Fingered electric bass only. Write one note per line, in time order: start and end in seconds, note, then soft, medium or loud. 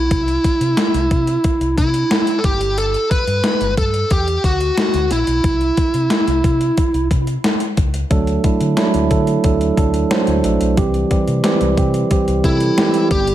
0.11 0.36 C2 medium
0.61 0.73 C3 medium
0.94 1.07 C2 medium
1.11 1.36 C3 medium
1.61 1.73 C2 medium
1.78 2.03 C3 medium
2.44 2.94 G1 medium
3.27 3.40 G2 medium
3.61 3.73 G1 medium
3.77 4.02 G2 medium
4.11 4.36 E2 medium
4.44 4.69 D2 medium
4.94 5.07 D2 medium
5.10 5.23 A#1 medium
5.27 5.40 B1 medium
5.44 5.69 C2 medium
5.94 6.07 C3 medium
6.27 6.40 C2 medium
6.44 6.69 C3 medium
6.94 7.07 C2 medium
7.11 7.36 C3 medium
7.78 8.03 C#2 medium
8.11 8.36 D2 medium
8.61 8.73 D3 medium
8.94 9.07 D2 medium
9.11 9.36 D3 loud
9.44 9.69 D2 medium
9.78 10.03 D2 medium
10.28 10.40 D2 medium
10.44 10.57 A#1 medium
10.61 10.73 B1 medium
10.77 11.02 C2 medium
11.28 11.40 C3 medium
11.61 11.73 C2 medium
11.77 12.03 C3 medium
12.28 12.40 C2 medium
12.44 12.69 C3 medium
13.11 13.35 G1 medium